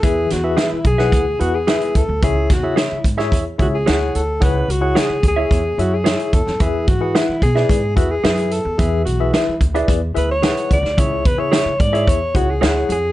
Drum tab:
HH |x-x-x-x-x-x-xxx-|x-x-x-x-x-x-x-x-|x-x-x-x-x-x-xxx-|x-x-x-x-x-x-xxx-|
SD |--o-o--o----o---|--o-o--o----o---|----o-------o--o|----o--o----o---|
BD |o-----o-o-----o-|o-o---o-o-o-----|o-----o-o-----o-|o-o---o-o-o-----|

HH |x-x-x-xxx-x-xxx-|x-x-x-xxx-x-x-x-|
SD |----o-------o--o|----o-------o---|
BD |o-----o-o-----o-|o-o---o-o-o-----|